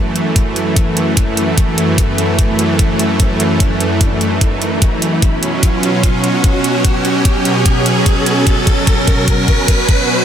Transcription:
Already playing: F#2 E3 A3, riser
0.16 closed hi-hat
0.36 kick, closed hi-hat
0.56 closed hi-hat
0.76 kick, closed hi-hat
0.97 closed hi-hat
1.17 kick, closed hi-hat
1.37 closed hi-hat
1.57 kick, closed hi-hat
1.78 closed hi-hat
1.98 kick, closed hi-hat
2.18 closed hi-hat
2.39 kick, closed hi-hat
2.59 closed hi-hat
2.79 kick, closed hi-hat
2.99 closed hi-hat
3.20 kick, closed hi-hat
3.40 closed hi-hat
3.60 kick, closed hi-hat
3.80 closed hi-hat
4.01 kick, closed hi-hat
4.21 closed hi-hat
4.41 kick, closed hi-hat
4.62 closed hi-hat
4.82 kick, closed hi-hat
5.02 closed hi-hat
5.22 B2 F#3 C#4, kick, closed hi-hat
5.43 closed hi-hat
5.63 kick, closed hi-hat
5.83 closed hi-hat
6.03 kick, closed hi-hat
6.24 closed hi-hat
6.44 kick, closed hi-hat
6.64 closed hi-hat
6.85 kick, closed hi-hat
7.05 closed hi-hat
7.25 kick, closed hi-hat
7.45 closed hi-hat
7.66 kick, closed hi-hat
7.86 closed hi-hat
8.06 kick, closed hi-hat
8.26 closed hi-hat
8.47 kick, closed hi-hat
8.67 kick, closed hi-hat
8.87 kick, closed hi-hat
9.07 kick, closed hi-hat
9.28 kick, closed hi-hat
9.48 kick, closed hi-hat
9.68 kick, closed hi-hat
9.89 kick, closed hi-hat

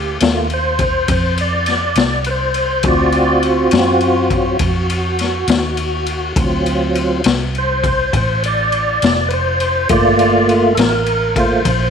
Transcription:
Already playing: D2 G4
0.20 D#2 A3 A#3 F4, snare, ride
0.50 C5, ride
0.79 kick, ride
1.08 F2 C5, kick, ride
1.38 D5, ride
1.66 snare, ride
1.95 C2, snare, ride
2.24 B4, ride
2.31 C5
2.54 ride
2.83 D2 C4 F4 F#4, kick, ride
2.88 D5
3.12 ride
3.43 ride
3.71 F#2, snare, ride
4.01 ride
4.30 F#3 C4 F4, kick, ride
4.59 F2, kick, ride
4.90 ride
5.19 snare, ride
5.48 D#2, snare, ride
5.77 ride
6.06 ride
6.36 D2 F#3 C4, kick, ride
6.40 F4
6.66 ride
6.95 ride
7.24 C2, snare, ride
7.55 C5, ride
7.84 kick, ride
8.13 A1 C5, kick, ride
8.44 D5, ride
8.72 ride
9.02 F1, snare, ride
9.28 B4, ride
9.33 C5
9.60 ride
9.89 G1 A3 A#3 F4 D5, kick, ride
10.19 ride
10.49 ride
10.75 A1 A4 A#4, ride
10.79 snare
11.06 ride
11.36 A3 A#3 F4, kick, ride
11.40 C5
11.65 A#1, kick, ride

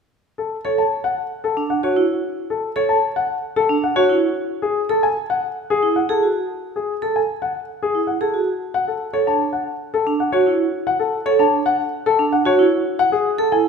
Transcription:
0.38 A4
0.65 A4 C#5
0.78 A5
1.04 F#5
1.44 A4
1.57 D4
1.70 F#5
1.83 F#4 C#5
1.96 E4
2.50 A4
2.76 A4 C#5
2.89 A5
3.16 F#5
3.56 A4
3.69 D4
3.84 F#5
3.96 F#4 C#5
4.09 E4
4.62 G#4
4.89 A4
5.03 G#5
5.30 F#5
5.70 G#4
5.83 E4
5.96 F#5
6.09 G#4 A4
6.23 F#4
6.76 G#4
7.02 A4
7.16 G#5
7.42 F#5
7.83 G#4
7.95 E4
8.07 F#5
8.21 G#4 A4
8.34 F#4
8.74 F#5
8.88 A4
9.13 A4 C#5
9.27 D4 A5
9.53 F#5
9.94 A4
10.07 D4
10.20 F#5
10.32 F#4 C#5
10.47 E4
10.87 F#5
11.00 A4
11.26 A4 C#5
11.39 D4 A5
11.66 F#5
12.06 A4
12.19 D4
12.32 F#5
12.45 F#4 C#5
12.59 E4
12.99 F#5
13.12 G#4
13.38 A4
13.52 E4 G#5

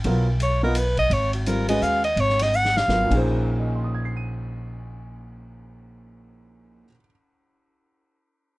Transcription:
0.04 B1 F#3 B3 F4 A#4, ride
0.40 C#5, hi-hat pedal, ride
0.63 B3 F4 A#4 D#5
0.75 B4, hi-hat pedal, ride
0.97 D#5, kick, ride
1.10 G#1 C#5, ride
1.33 F#4, ride
1.46 G3 C4 F4 A#4, hi-hat pedal, ride
1.69 G#3 C#4 F#4 B4 D#5, ride
1.81 D#2 F5, hi-hat pedal
2.04 D#5, ride
2.16 G#1 C#5, ride
2.30 snare
2.39 D#5, snare, ride
2.53 F#5, hi-hat pedal
2.65 snare
2.77 F5, snare
2.88 G#1 F#3 B3 F4 A#4, snare
3.05 A#2 A#3
3.09 A#1 C#4 D#4, kick, crash
3.14 G#4 C5
3.60 D#5
3.67 G#5
3.76 C6
3.84 D#6
3.95 G#6
4.05 C7
4.17 D#7

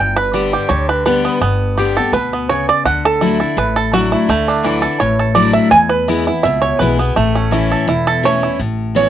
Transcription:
Already playing: G1 G2 G5
0.16 B4
0.33 D3 G3 B3 G4
0.53 G4
0.69 D2 D3 C#5
0.89 B4
1.05 D3 G3 B3 G4 B4
1.25 B3
1.41 G1 G2 B3
1.77 D3 G3 B3 G4
1.97 B3 G4 A4
2.12 D2 B2 B4
2.33 B3
2.49 C#3 C#5
2.69 D5
2.85 D2 D3 F#5
3.05 A4
3.21 F#3 A3 D4 E4
3.40 D4 E4 A4
3.57 A1 A2 B4
3.76 A4
3.93 F#3 A3 D4 E4 F#4
4.12 E4
4.29 D2 D3 A3
4.48 D4
4.63 E3 F#3 A3 D4 E4
4.82 D4 E4 A4
5.00 A1 A2 C#5
5.20 A4
5.35 F#3 A3 D4 E4 D5
5.54 E5
5.71 E2 G#5
5.90 B4
6.08 E3 G#3 B3 E4
6.27 B3 E4
6.43 C#2 B2 E5
6.62 C#5
6.79 B1 E3 G#3 B3 E4 B4
6.99 B3 E4
7.16 A1 A2 A3
7.35 C#4
7.51 E3 A3 C#4 E4
7.72 A4
7.88 E1 E2 E4
8.07 A4
8.23 E3 A3 C#4 E4 C#5
8.43 E4
8.59 A1 A2
8.95 E3 B3 C#4 E4 C#5

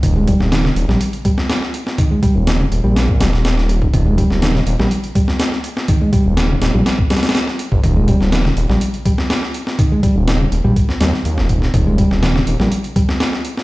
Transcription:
0.03 D#1 D#3, kick, closed hi-hat
0.16 G#3
0.27 G3, kick, closed hi-hat
0.40 D#1, snare
0.52 D#3, snare, closed hi-hat
0.65 C#3, snare
0.76 D#1, closed hi-hat
0.88 A#1 G3, snare
1.01 closed hi-hat
1.13 closed hi-hat
1.25 G3, kick, closed hi-hat
1.38 snare
1.50 snare, closed hi-hat
1.62 snare
1.74 closed hi-hat
1.87 snare
1.98 D#3, kick, closed hi-hat
2.11 G#3
2.23 G3, kick, closed hi-hat
2.35 D#1
2.47 D#3, snare, closed hi-hat
2.60 C#3
2.71 D#1, closed hi-hat
2.84 A#1 G3
2.96 snare, closed hi-hat
3.09 kick
3.20 D#1 G3, snare, closed hi-hat
3.33 snare
3.45 snare, closed hi-hat
3.58 snare
3.69 closed hi-hat
3.82 kick
3.93 D#1 D#3, kick, closed hi-hat
4.06 G#3
4.18 G3, kick, closed hi-hat
4.31 D#1, snare
4.42 D#3, snare, closed hi-hat
4.55 C#3, snare
4.67 D#1, closed hi-hat
4.79 A#1 G3, snare
4.91 closed hi-hat
5.04 closed hi-hat
5.15 G3, kick, closed hi-hat
5.28 snare
5.40 snare, closed hi-hat
5.52 snare
5.64 closed hi-hat
5.77 snare
5.88 D#3, kick, closed hi-hat
6.01 G#3
6.13 G3, kick, closed hi-hat
6.26 D#1
6.37 D#3, snare, closed hi-hat
6.50 C#3
6.62 D#1, snare, closed hi-hat
6.74 A#1 G3
6.86 snare, closed hi-hat
6.99 kick
7.10 G3, snare, closed hi-hat
7.17 snare, closed hi-hat
7.23 snare, closed hi-hat
7.29 snare, closed hi-hat
7.35 snare, closed hi-hat
7.47 snare
7.59 closed hi-hat
7.72 G1, kick
7.84 D#1 D#3, kick, closed hi-hat
7.96 G#3
8.08 G3, kick, closed hi-hat
8.21 D#1, snare
8.32 D#3, snare, closed hi-hat
8.45 C#3, snare
8.57 D#1, closed hi-hat
8.69 A#1 G3, snare
8.81 closed hi-hat
8.94 closed hi-hat
9.06 G3, kick, closed hi-hat
9.18 snare
9.30 snare, closed hi-hat
9.43 snare
9.54 closed hi-hat
9.67 snare
9.79 D#3, kick, closed hi-hat
9.92 G#3
10.03 G3, kick, closed hi-hat
10.16 D#1
10.27 D#3, snare, closed hi-hat
10.40 C#3
10.52 D#1, closed hi-hat
10.64 A#1 G3
10.76 kick, closed hi-hat
10.89 snare
11.01 D#2 G3, snare, closed hi-hat
11.13 D#2, snare
11.25 D#2, closed hi-hat
11.38 D#1, snare
11.49 kick, closed hi-hat
11.62 snare
11.74 D#1 D#3, kick, closed hi-hat
11.87 G#3
11.98 G3, kick, closed hi-hat
12.11 D#1, snare
12.23 D#3, snare, closed hi-hat
12.35 C#3, snare
12.47 D#1, closed hi-hat
12.60 A#1 G3, snare
12.72 closed hi-hat
12.84 closed hi-hat
12.96 G3, kick, closed hi-hat
13.09 snare
13.20 snare, closed hi-hat
13.33 snare
13.45 closed hi-hat
13.57 snare

